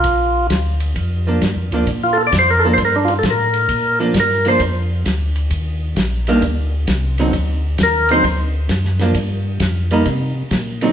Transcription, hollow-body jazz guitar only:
X:1
M:4/4
L:1/8
Q:"Swing" 1/4=132
K:Gm
V:1 name="Hollow-body jazz guitar"
z4 z [F,B,D] z [F,B,D] | z3 [F,B,D] z4 | z [F,B,D] z [F,B,D] z4 | z3 [E,G,B,D] z3 [D,^F,CE] |
z3 [D,^F,CE] z3 [=F,B,D] | z3 [G,B,E] z3 [D,^F,CE] |]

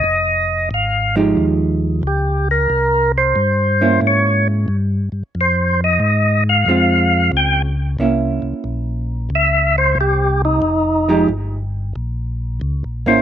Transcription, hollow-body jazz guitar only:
X:1
M:4/4
L:1/8
Q:"Swing" 1/4=91
K:Fm
V:1 name="Hollow-body jazz guitar"
z3 [F,A,EG]3 z2 | z3 [B,D=E]3 z2 | z4 [A,CF]3 z | [B,D=E]4- [B,DE] z3 |
z [F,A,EG] z4 z [B,D=E] |]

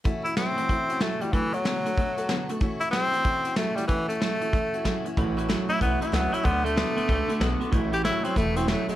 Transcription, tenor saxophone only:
X:1
M:4/4
L:1/8
Q:"Swing" 1/4=188
K:A
V:1 name="Tenor saxophone"
z E =C4 A, =G, | E, F,6 z | z E =C4 A, =G, | E, A,6 z |
z3 E B, E B, E | B, A,6 z | z =G E =C A, C A, A, |]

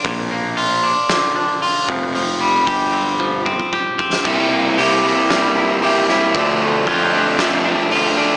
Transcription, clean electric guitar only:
X:1
M:4/4
L:1/8
Q:1/4=114
K:F
V:1 name="Clean electric guitar"
B,, B, F D D, D F F, | F, G, G C F, C G C | C, B, G E G, E G E | D, A, F D D, D F D |]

